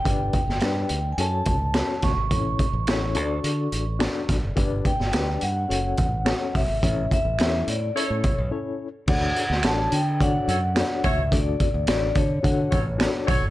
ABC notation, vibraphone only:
X:1
M:4/4
L:1/16
Q:1/4=106
K:D
V:1 name="Vibraphone"
g6- g3/2 ^g/2 a6 c'2- | c'12- c'2 z2 | z2 g4 f8 e2- | e2 e3- e/2 c/2 d2 c6 z2 |
f4 a2 g2 f6 e2 | d4 d2 c8 z2 |]